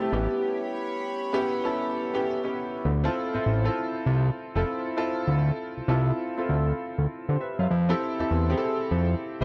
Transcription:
Already playing: grand piano E4 G4, analog synth pad G4 E5 A5
0.00 grand piano A3 C4 E4 G4
0.12 analog synth bass A1, grand piano B3 C#4 E4 G4, analog synth pad C#5 B5
1.33 grand piano B3 C#4 E4 G4
1.64 grand piano B3 C#4 E4 A4
2.13 grand piano B3 C#4 E4 G4
2.44 grand piano B3 C#4 E4 G4
2.85 analog synth bass D2
3.04 grand piano C4 E4 F4 A4
3.34 analog synth bass A1, grand piano C4 E4 F4 C5
3.46 analog synth bass A1
3.64 grand piano C4 E4 F4 A4
4.06 analog synth bass C2
4.55 analog synth bass F1, grand piano C4 E4 F4 A4
4.97 grand piano C4 E4 F4 A4
5.28 analog synth bass D2
5.77 analog synth bass C2
5.88 analog synth bass C2, grand piano C4 E4 F4 A4
6.37 grand piano C4 E4 F4 A4
6.49 analog synth bass D2
6.98 analog synth bass D2
7.29 analog synth bass D3, grand piano G4 C5
7.41 grand piano B4 E5
7.59 analog synth bass F#2, grand piano C5 F5
7.71 analog synth bass F2
7.89 grand piano C4 E4 G4 A4
8.19 analog synth bass E2, grand piano C4 E4 G4 A4
8.31 analog synth bass E2
8.50 grand piano C4 E4 G4 G#4
8.58 grand piano A4
8.91 analog synth bass F2
9.41 analog synth bass C2, grand piano C4 E4

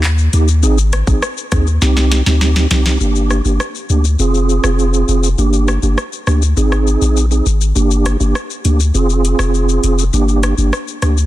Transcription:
Already playing: sub bass D#2
0.04 clap, shaker
0.18 shaker
0.33 sub bass D#2, tonewheel organ A#3 D#4 G4, closed hi-hat, shaker
0.48 shaker
0.63 sub bass G#1, tonewheel organ C4 D#4 G#4, shaker
0.78 shaker
0.93 cross-stick, closed hi-hat, shaker
1.07 sub bass G#1, tonewheel organ C4 D#4 G#4, kick, shaker
1.22 cross-stick, shaker
1.37 shaker
1.52 sub bass D#2, tonewheel organ C4 D#4 G#4, kick, cross-stick, closed hi-hat, shaker
1.67 shaker
1.82 sub bass C2, tonewheel organ C4 D#4 G4, snare, shaker
1.97 snare, shaker
2.12 snare, closed hi-hat, shaker
2.26 sub bass D2, tonewheel organ C4 D#4 G4, snare, shaker
2.41 snare, shaker
2.56 snare, shaker
2.71 sub bass C2, tonewheel organ C4 D#4 G4, snare, closed hi-hat, shaker
2.86 snare, shaker
3.00 sub bass G1, tonewheel organ A#3 D4 G4, shaker
3.15 shaker
3.30 cross-stick, shaker
3.45 sub bass G1, tonewheel organ A#3 D4 G4, shaker
3.60 cross-stick, shaker
3.75 shaker
3.89 sub bass D2, tonewheel organ A#3 D4 G4, shaker
4.05 shaker
4.19 sub bass F1, tonewheel organ C4 F4 G#4, shaker
4.34 shaker
4.49 shaker
4.64 sub bass F1, cross-stick, shaker
4.79 shaker
4.94 shaker
5.08 sub bass F1, shaker
5.24 shaker
5.38 sub bass G1, tonewheel organ A#3 D4 G4, shaker
5.53 shaker
5.68 cross-stick, shaker
5.83 sub bass G1, tonewheel organ A#3 D4 G4, shaker
5.98 cross-stick, shaker
6.13 shaker
6.27 sub bass D2, tonewheel organ A#3 D4 G4, cross-stick, shaker
6.42 shaker
6.57 sub bass G#1, tonewheel organ C4 D#4 G#4, shaker
6.72 cross-stick, shaker
6.87 shaker
7.02 sub bass A#1, shaker
7.17 shaker
7.31 tonewheel organ C4 D#4 G#4, shaker
7.46 sub bass G#1, shaker
7.61 shaker
7.75 sub bass G1, tonewheel organ A#3 D4 G4, shaker
7.91 shaker
8.06 cross-stick, closed hi-hat, shaker
8.20 sub bass G1, tonewheel organ A#3 D4 G4, shaker
8.35 cross-stick, shaker
8.50 shaker
8.65 sub bass D2, tonewheel organ A#3 D4 G4, closed hi-hat, shaker
8.80 shaker
8.94 sub bass F1, tonewheel organ C4 F4 G#4, shaker
9.10 shaker
9.25 closed hi-hat, shaker
9.39 sub bass F1, cross-stick, shaker
9.54 shaker
9.69 shaker
9.84 sub bass F1, closed hi-hat, shaker
9.99 shaker
10.13 sub bass G1, tonewheel organ A#3 D4 G4, shaker
10.28 shaker
10.43 cross-stick, closed hi-hat, shaker
10.58 sub bass G1, tonewheel organ A#3 D4 G4, shaker
10.73 cross-stick, shaker
10.88 shaker
11.02 sub bass D2, tonewheel organ A#3 D4 G4, cross-stick, closed hi-hat, shaker
11.17 shaker

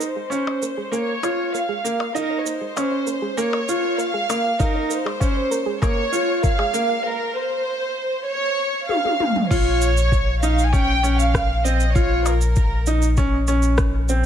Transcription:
0.00 synth arpeggio sound A#4, violin section C5, shaker
0.16 synth arpeggio sound G#4
0.30 grand piano C#4, synth arpeggio sound F5, shaker
0.47 synth arpeggio sound C#5, percussion blips
0.62 synth arpeggio sound A#4, shaker
0.77 synth arpeggio sound G#4
0.91 grand piano A#3, violin section C#5, synth arpeggio sound G#5, shaker
1.23 grand piano F4, synth arpeggio sound C#5, percussion blips, shaker
1.54 synth arpeggio sound A#4, violin section F5, shaker
1.69 synth arpeggio sound G#4
1.84 grand piano A#3, shaker
1.99 synth arpeggio sound F5, percussion blips
2.15 grand piano D#4, violin section A#4, synth arpeggio sound F5, shaker
2.30 synth arpeggio sound C#5
2.39 violin section C#5
2.46 synth arpeggio sound A#4, violin section C5, shaker
2.61 synth arpeggio sound G#4
2.76 grand piano C#4, synth arpeggio sound F5, percussion blips, shaker
2.92 synth arpeggio sound C#5
3.07 synth arpeggio sound A#4, shaker
3.22 synth arpeggio sound G#4
3.37 grand piano A#3, violin section C#5, synth arpeggio sound G#5, shaker
3.53 percussion blips
3.68 grand piano F4, synth arpeggio sound C#5, shaker
3.98 synth arpeggio sound A#4, violin section F5, shaker
4.14 synth arpeggio sound G#4
4.29 grand piano A#3, percussion blips, shaker
4.44 synth arpeggio sound F5
4.59 grand piano D#4, violin section A#4, synth arpeggio sound F5, kick, shaker
4.75 synth arpeggio sound C#5
4.90 synth arpeggio sound A#4, violin section C5, shaker
5.06 synth arpeggio sound G#4, percussion blips
5.20 grand piano C#4, synth arpeggio sound F5, kick, shaker
5.35 synth arpeggio sound C#5
5.51 synth arpeggio sound A#4, shaker
5.66 synth arpeggio sound G#4
5.82 grand piano A#3, violin section C#5, synth arpeggio sound G#5, kick, percussion blips, shaker
6.12 grand piano F4, synth arpeggio sound C#5, shaker
6.43 synth arpeggio sound A#4, violin section F5, kick, shaker
6.59 synth arpeggio sound G#4, percussion blips
6.74 grand piano A#3, shaker
6.89 synth arpeggio sound F5
7.05 violin section A#4
7.35 violin section C5
8.28 violin section C#5
8.89 violin section F5, high tom
9.05 high tom
9.20 mid tom
9.36 mid tom
9.51 analog synth bass A#1, grand piano F4, violin section C#5, kick, crash, shaker
9.82 shaker
9.97 shaker
10.12 kick, shaker
10.43 grand piano D#4, violin section F5, shaker
10.59 shaker
10.66 violin section G#5
10.72 grand piano C#4, violin section G5, kick, shaker
11.03 grand piano C#4, shaker
11.20 violin section F5, shaker
11.34 kick, cross-stick, shaker
11.64 grand piano C4, violin section D#5, shaker
11.80 shaker
11.95 grand piano F4, violin section C#5, kick, shaker
12.26 violin section A#4, percussion blips, shaker
12.41 shaker
12.56 kick, shaker
12.86 grand piano D#4, shaker
13.02 shaker
13.17 grand piano C#4, kick, shaker
13.47 grand piano C#4, shaker
13.62 shaker
13.78 kick, cross-stick, shaker
14.09 grand piano C4, shaker

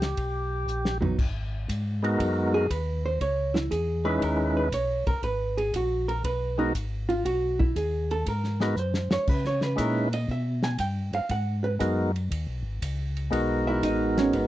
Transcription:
Already playing: tonewheel organ C#2 G4
0.02 snare, ride
0.17 tonewheel organ B1, kick, ride
0.67 tonewheel organ A#1, hi-hat pedal
0.85 snare
1.01 hollow-body jazz guitar F#3 B3 D#4, floor tom
1.19 tonewheel organ G#1, kick, crash
1.68 tonewheel organ G#2, kick, hi-hat pedal, ride
2.03 tonewheel organ G#3 B3 D#4 F#4 A#4, ride
2.19 tonewheel organ F#2, kick, ride
2.54 hollow-body jazz guitar G#4
2.70 tonewheel organ D#2, hollow-body jazz guitar B4, kick, hi-hat pedal, ride
3.06 hollow-body jazz guitar C5
3.20 tonewheel organ C#2, hollow-body jazz guitar C#5, kick, ride
3.54 hollow-body jazz guitar E4, snare
3.70 tonewheel organ E2, hollow-body jazz guitar G#4, kick, hi-hat pedal, ride
4.04 tonewheel organ G#3 C#4 D#4 E4 B4, hollow-body jazz guitar B4
4.21 tonewheel organ D#2, hollow-body jazz guitar A#4, kick, ride
4.57 hollow-body jazz guitar B4
4.72 tonewheel organ B1, hollow-body jazz guitar C#5, kick, hi-hat pedal, ride
5.06 tonewheel organ B1, hollow-body jazz guitar A#4, kick, ride
5.22 tonewheel organ G#1, hollow-body jazz guitar B4, kick, ride
5.57 hollow-body jazz guitar G#4, ride
5.73 tonewheel organ A#1, hollow-body jazz guitar F#4, kick, hi-hat pedal, ride
6.08 hollow-body jazz guitar A#4, ride
6.24 tonewheel organ B1, hollow-body jazz guitar B4, kick, ride
6.58 tonewheel organ G#3 B3 D#4 F#4 A#4, hollow-body jazz guitar D#4
6.74 tonewheel organ G#1, kick, hi-hat pedal, ride
7.09 hollow-body jazz guitar F4, ride
7.25 tonewheel organ B1, hollow-body jazz guitar F#4, kick, ride
7.59 hollow-body jazz guitar E4, kick
7.76 tonewheel organ D#2, hollow-body jazz guitar G#4, kick, hi-hat pedal, ride
8.11 hollow-body jazz guitar A4, ride
8.26 tonewheel organ G#2, hollow-body jazz guitar A#4, kick, ride
8.44 snare
8.60 tonewheel organ G#3 B3 D#4 F#4 A#4, hollow-body jazz guitar B4, snare
8.76 tonewheel organ F#2, hollow-body jazz guitar C5, hi-hat pedal
8.94 snare
9.10 tonewheel organ F#2, hollow-body jazz guitar C#5, snare
9.27 tonewheel organ C#3, hollow-body jazz guitar B4, kick, crash
9.44 hollow-body jazz guitar C#5, snare
9.61 hollow-body jazz guitar B4, snare
9.76 tonewheel organ A#2 G#3 C#4 D#4 E4 B4, kick, hi-hat pedal, ride
9.80 hollow-body jazz guitar A#4
10.13 hollow-body jazz guitar D#5, ride
10.28 tonewheel organ B2, hollow-body jazz guitar E5, kick
10.63 hollow-body jazz guitar G#5, snare
10.78 tonewheel organ G2, hollow-body jazz guitar G5, kick, hi-hat pedal, ride
11.13 tonewheel organ G2, hollow-body jazz guitar F5, ride
11.29 tonewheel organ G#2, hollow-body jazz guitar F#5, kick, ride
11.64 hollow-body jazz guitar B4
11.79 tonewheel organ F#2 G#3 B3 D#4 F#4 A#4, kick, hi-hat pedal, ride
12.16 ride
12.31 tonewheel organ D#2, kick, ride
12.47 tonewheel organ B1
12.63 tonewheel organ G#1
12.81 tonewheel organ C#2, kick, hi-hat pedal, ride
13.17 ride
13.30 tonewheel organ B1 G#3 B3 D#4 F#4 A#4, kick, ride
13.67 hollow-body jazz guitar E4 E5
13.83 tonewheel organ A1, hollow-body jazz guitar D#4 D#5, kick, hi-hat pedal, ride
14.18 hollow-body jazz guitar C#4 C#5, snare, ride
14.33 tonewheel organ G#1, hollow-body jazz guitar B3 B4, kick, ride

